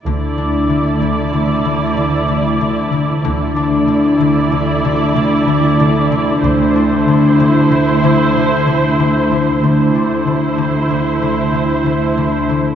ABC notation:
X:1
M:5/4
L:1/8
Q:1/4=94
K:Cmix
V:1 name="Viola section"
[Ed]8- [Ed]2 | [Ed]8- [Ed]2 | [Ec]8- [Ec]2 | [Ec]8- [Ec] z |]
V:2 name="Harp" clef=bass
D, D D, D, D, D, D, D, D, D, | D, D D, D, D, D, D, D, D, D, | D, D D, D, D, D, D, D, D, D, | D, D D, D, D, D, D, D, D, D, |]
V:3 name="Cello section" clef=bass
D,,8- D,,2 | D,,8- D,,2 | D,,8- D,,2 | D,,8- D,, z |]
V:4 name="Double bass section" clef=bass
D,,2 z8 | D,,2 z8 | D,,2 z8 | D,,2 z8 |]